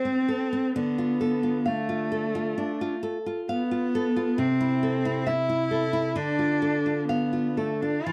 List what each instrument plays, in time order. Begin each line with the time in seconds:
Already playing: cello C4, nylon-string guitar C5
0.05 nylon-string guitar C4
0.28 nylon-string guitar A4
0.53 nylon-string guitar C4
0.75 nylon-string guitar D3, cello B3
0.98 nylon-string guitar F4
1.21 nylon-string guitar A4
1.43 nylon-string guitar F4
1.66 cello A3, nylon-string guitar F5
1.89 nylon-string guitar F4
2.12 nylon-string guitar A4
2.35 nylon-string guitar F4
2.58 nylon-string guitar D4
2.81 nylon-string guitar F4
3.03 nylon-string guitar A4
3.26 nylon-string guitar F4
3.49 cello B3, nylon-string guitar F5
3.71 nylon-string guitar F4
3.95 nylon-string guitar A4
4.16 nylon-string guitar F4
4.38 nylon-string guitar C3, cello C4
4.61 nylon-string guitar E4
4.83 nylon-string guitar A4
5.05 nylon-string guitar E4
5.27 cello E4, nylon-string guitar E5
5.49 nylon-string guitar E4
5.71 nylon-string guitar A4
5.93 nylon-string guitar E4
6.16 nylon-string guitar D3, cello D4
6.39 nylon-string guitar F4
6.62 nylon-string guitar A4
6.86 nylon-string guitar F4
7.08 cello B3, nylon-string guitar F5
7.33 nylon-string guitar F4
7.57 cello A3, nylon-string guitar A4
7.81 cello D4, nylon-string guitar F4
8.05 nylon-string guitar E3, cello F4